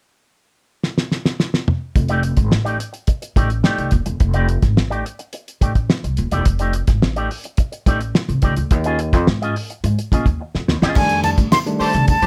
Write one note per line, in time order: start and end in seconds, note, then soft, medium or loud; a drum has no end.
0.83 snare medium
0.98 snare medium
1.12 snare medium
1.25 snare medium
1.40 snare medium
1.54 snare medium
1.68 mid tom medium
1.95 2.33 F1 medium
1.95 muted clean electric guitar stroke soft
1.95 kick loud
1.95 closed hi-hat medium
2.09 2.22 A3 medium
2.09 2.23 D#4 medium
2.09 2.23 G4 medium
2.09 2.23 D5 medium
2.09 closed hi-hat medium
2.23 muted clean electric guitar stroke soft
2.23 closed hi-hat medium
2.37 2.50 G#1 medium
2.37 muted clean electric guitar stroke soft
2.37 kick medium
2.37 closed hi-hat medium
2.51 2.76 A1 medium
2.51 muted clean electric guitar stroke soft
2.51 snare loud
2.65 2.78 A3 medium
2.65 2.78 D#4 medium
2.65 2.79 G4 medium
2.65 2.79 D5 medium
2.65 closed hi-hat soft
2.79 muted clean electric guitar stroke soft
2.79 closed hi-hat medium
2.93 muted clean electric guitar stroke soft
2.93 closed hi-hat soft
3.07 muted clean electric guitar stroke soft
3.07 kick medium
3.07 closed hi-hat medium
3.22 muted clean electric guitar stroke soft
3.22 closed hi-hat medium
3.36 3.61 A1 medium
3.36 3.49 A3 medium
3.36 3.50 D#4 medium
3.36 3.50 G4 medium
3.36 3.49 D5 medium
3.36 kick medium
3.36 closed hi-hat medium
3.50 muted clean electric guitar stroke soft
3.50 closed hi-hat soft
3.64 3.90 A3 medium
3.64 3.90 D#4 medium
3.64 3.90 G4 medium
3.64 3.91 D5 medium
3.64 snare loud
3.78 3.90 C2 medium
3.78 closed hi-hat soft
3.91 4.05 D#1 medium
3.91 muted clean electric guitar stroke soft
3.91 kick medium
3.91 closed hi-hat medium
4.06 4.19 E1 medium
4.06 muted clean electric guitar stroke medium
4.06 closed hi-hat medium
4.20 4.58 F1 medium
4.20 muted clean electric guitar stroke soft
4.20 kick loud
4.20 closed hi-hat medium
4.34 4.48 A3 medium
4.34 4.48 D#4 medium
4.34 4.48 G4 medium
4.34 4.48 D5 medium
4.34 closed hi-hat medium
4.49 muted clean electric guitar stroke soft
4.49 closed hi-hat medium
4.62 4.75 G#1 medium
4.62 muted clean electric guitar stroke soft
4.62 kick medium
4.62 snare soft
4.62 closed hi-hat medium
4.77 5.02 A1 medium
4.77 muted clean electric guitar stroke soft
4.77 snare loud
4.90 5.04 A3 medium
4.90 5.04 D#4 medium
4.90 5.04 G4 medium
4.90 5.04 D5 medium
4.90 closed hi-hat soft
5.05 muted clean electric guitar stroke soft
5.05 closed hi-hat medium
5.19 muted clean electric guitar stroke soft
5.19 closed hi-hat soft
5.33 muted clean electric guitar stroke soft
5.33 closed hi-hat medium
5.48 closed hi-hat medium
5.61 5.86 A1 medium
5.61 5.72 A3 medium
5.61 5.72 D#4 soft
5.61 5.72 G4 medium
5.61 5.73 D5 medium
5.61 kick medium
5.61 closed hi-hat medium
5.75 muted clean electric guitar stroke soft
5.75 kick medium
5.75 closed hi-hat soft
5.89 muted clean electric guitar stroke soft
5.89 snare loud
6.04 6.16 C2 medium
6.04 muted clean electric guitar stroke soft
6.04 closed hi-hat soft
6.17 6.30 D#1 medium
6.17 closed hi-hat medium
6.31 6.44 E1 medium
6.31 6.45 A3 medium
6.31 6.45 D#4 medium
6.31 6.45 G4 medium
6.31 6.45 D5 medium
6.31 closed hi-hat medium
6.45 6.83 F1 medium
6.45 muted clean electric guitar stroke soft
6.45 kick loud
6.45 closed hi-hat medium
6.59 6.73 A3 medium
6.59 6.74 D#4 medium
6.59 6.73 G4 medium
6.59 6.73 D5 medium
6.59 closed hi-hat medium
6.73 muted clean electric guitar stroke soft
6.73 closed hi-hat medium
6.87 7.00 G#1 medium
6.87 muted clean electric guitar stroke soft
6.87 kick medium
6.87 snare soft
6.87 closed hi-hat medium
7.02 7.27 A1 medium
7.02 muted clean electric guitar stroke soft
7.02 snare loud
7.16 7.30 A3 medium
7.16 7.30 D#4 medium
7.16 7.30 G4 medium
7.16 7.30 D5 medium
7.16 closed hi-hat soft
7.31 open hi-hat medium
7.44 muted clean electric guitar stroke soft
7.44 closed hi-hat medium
7.57 muted clean electric guitar stroke soft
7.57 kick loud
7.57 closed hi-hat medium
7.72 muted clean electric guitar stroke soft
7.72 closed hi-hat medium
7.86 8.11 A1 medium
7.86 8.00 A3 medium
7.86 8.00 D#4 medium
7.86 8.00 G4 medium
7.86 7.99 D5 medium
7.86 kick medium
7.86 closed hi-hat medium
8.01 muted clean electric guitar stroke soft
8.01 closed hi-hat soft
8.15 muted clean electric guitar stroke soft
8.15 snare loud
8.29 8.41 C2 medium
8.29 closed hi-hat soft
8.42 8.55 C#2 medium
8.42 8.53 A3 medium
8.42 8.53 D#4 medium
8.42 8.54 G4 medium
8.42 8.54 D5 medium
8.42 kick medium
8.42 closed hi-hat medium
8.57 8.71 D2 medium
8.57 muted clean electric guitar stroke soft
8.57 closed hi-hat medium
8.71 9.13 D#2 medium
8.71 muted clean electric guitar stroke soft
8.71 kick loud
8.71 closed hi-hat medium
8.84 8.99 C#4 medium
8.84 8.99 F4 medium
8.84 8.99 G#4 medium
8.84 8.99 D#5 medium
8.84 closed hi-hat soft
8.99 muted clean electric guitar stroke soft
8.99 closed hi-hat medium
9.13 9.25 F2 medium
9.13 muted clean electric guitar stroke soft
9.13 kick medium
9.13 snare soft
9.13 closed hi-hat medium
9.27 9.52 G#2 medium
9.27 muted clean electric guitar stroke soft
9.27 snare loud
9.42 9.55 C#4 medium
9.42 9.56 F4 medium
9.42 9.55 G#4 medium
9.42 9.55 D#5 medium
9.42 closed hi-hat soft
9.56 muted clean electric guitar stroke soft
9.56 open hi-hat medium
9.70 muted clean electric guitar stroke soft
9.70 closed hi-hat soft
9.84 9.96 G#2 loud
9.84 muted clean electric guitar stroke soft
9.84 closed hi-hat medium
9.99 muted clean electric guitar stroke medium
9.99 closed hi-hat medium
10.12 10.24 A#2 medium
10.12 10.25 C#4 medium
10.12 10.25 F4 medium
10.12 10.26 G#4 medium
10.12 10.26 D#5 medium
10.12 kick medium
10.12 closed hi-hat medium
10.26 10.38 D#2 medium
10.26 muted clean electric guitar stroke soft
10.26 kick medium
10.26 closed hi-hat soft
10.41 muted clean electric guitar stroke soft
10.55 10.68 F2 medium
10.55 muted clean electric guitar stroke medium
10.55 snare medium
10.68 10.80 D#2 medium
10.68 snare medium
10.82 10.94 E2 medium
10.82 10.97 C#4 medium
10.82 10.97 F4 medium
10.82 10.97 G#4 medium
10.82 10.96 D#5 medium
10.82 snare medium
10.95 11.33 F2 loud
10.95 11.46 D#3 medium
10.95 11.46 G3 medium
10.95 11.46 A3 medium
10.95 11.46 D4 medium
10.95 11.22 G#5 medium
10.95 kick loud
10.95 crash loud
10.95 tambourine medium
10.95 muted conga medium
11.09 closed hi-hat medium
11.24 11.30 A5 medium
11.24 closed hi-hat medium
11.24 tambourine medium
11.24 muted conga medium
11.38 11.51 A2 medium
11.38 kick loud
11.38 closed hi-hat medium
11.38 tambourine soft
11.52 11.58 C6 loud
11.52 snare loud
11.52 tambourine medium
11.52 high conga medium
11.66 12.16 D#3 medium
11.66 12.16 G3 medium
11.66 12.16 A3 medium
11.66 12.16 D4 medium
11.66 closed hi-hat soft
11.80 11.89 A3 medium
11.80 11.89 G4 medium
11.80 11.89 C5 medium
11.80 12.06 A5 medium
11.80 muted upright bass stroke soft
11.80 open hi-hat medium
11.80 tambourine medium
11.93 12.07 C3 medium
11.93 closed hi-hat medium
11.93 tambourine soft
12.08 12.27 A5 medium
12.08 muted upright bass stroke soft
12.08 kick loud
12.08 closed hi-hat medium
12.08 tambourine medium
12.08 low conga medium
12.22 12.27 F3 loud
12.22 12.27 A3 medium
12.22 12.27 G4 medium
12.22 12.27 C5 medium
12.22 closed hi-hat medium
12.22 tambourine soft